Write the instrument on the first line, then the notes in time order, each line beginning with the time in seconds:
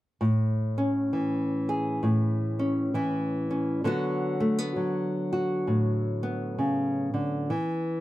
nylon-string guitar
0.21 A2
0.78 C#4
1.13 E3
1.69 G#4
2.03 A2
2.59 C#4
2.94 E3 E4
3.51 C#4
3.84 D3 F#3 B3 F#4
4.40 A3
4.58 B3
4.76 F#3
5.33 F#4
5.67 A2
6.23 B3
6.58 C#3
7.14 D3
7.50 E3